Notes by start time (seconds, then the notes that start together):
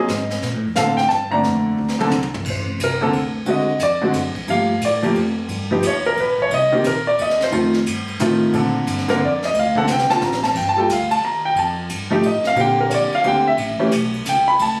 Already playing: C5 D#5
0.08 G#2, snare, hi-hat pedal
0.30 snare
0.42 A#2, brush sweep, snare
0.54 A2
0.65 F2
0.76 A2 D3 A#3 C4 A4 F5, snare, hi-hat pedal
0.97 G5, snare
1.09 G2 A5, snare
1.31 D3 A3 A#3 C4 D5 A#5
1.43 F2, brush sweep, snare
1.78 D2
1.88 snare
1.99 D3 A#3 C4 A4, high tom
2.11 C2, hi-hat pedal, high tom
2.23 high tom
2.34 floor tom
2.45 A#1, kick, crash
2.50 C5
2.56 A1
2.67 F1
2.78 C2, hi-hat pedal, ride
2.84 A#4
3.01 D3 A#3 C4 A4
3.11 D2, ride
3.45 D#2 D3 G#3 C4 F#4, ride
3.50 D#5
3.79 F2, hi-hat pedal, ride
3.83 D5
4.01 D3 G#3 C4 F#4
4.13 F#2, hi-hat pedal, ride
4.35 muted upright bass stroke, kick, ride
4.47 G2 F3 A3 A#3 G4 F5, ride
4.81 A2 D5, hi-hat pedal, ride
5.03 F3 A3 A#3 G4, ride
5.15 F2, ride
5.49 G2, ride
5.71 F3 B3 D#4 G4
5.82 D#2, hi-hat pedal, ride
5.87 C#5
6.05 A#4, ride
6.17 A#1 B4, ride
6.38 C#5, kick
6.50 C2, ride
6.54 D#5
6.72 D#3 A#3 C4 G4
6.84 A#1 A#4, hi-hat pedal, ride
7.07 D5
7.18 D#2 D#5, ride
7.30 snare
7.41 C5, snare
7.52 F2 D#3 A3 C4 F4, ride
7.73 snare
7.86 G2, hi-hat pedal, ride
8.08 ride
8.19 A2 D#3 A3 C4 F4, hi-hat pedal, ride
8.53 A#2 D3 A#3 C4 A4, ride
8.87 G2, hi-hat pedal, ride
8.98 snare
9.08 D3 A#3 C4 A#4, snare, ride
9.21 F2
9.25 D5
9.43 D#5, snare
9.54 D2, ride
9.59 F5
9.75 D3 A#3 C4 A4 F#5, kick
9.87 C2, snare, hi-hat pedal
9.92 G5
9.98 snare
10.09 D3 A#3 C4 F4 A5, muted upright bass stroke, snare
10.21 A1 A#5, snare
10.32 snare
10.43 A5, snare
10.55 G1 G5, kick, crash
10.69 A5
10.76 G3 A#3 F4 A4 G5
10.89 D2, hi-hat pedal, ride
10.93 F5
11.11 A5, ride
11.21 D#2 A#5
11.45 G5
11.55 F2 A5, ride
11.89 G2, hi-hat pedal, ride
12.10 F3 A3 D#4 G4
12.23 A2 D#5, ride
12.35 F2
12.44 D#2 F5, snare
12.55 A#2 D3 A#3 C4 G4, ride
12.60 G5
12.80 A#4
12.89 A#1 C#5, hi-hat pedal, ride
12.94 D5
13.12 F5, muted upright bass stroke, ride
13.24 D2 D3 A#3 C4 G4 G5, ride
13.47 E5
13.57 A1, ride
13.79 E3 A3 C#4 G4, muted upright bass stroke
13.92 B1, hi-hat pedal, ride
14.14 ride
14.25 C#2 G5, hi-hat pedal, ride
14.48 B5
14.59 D2 A5, ride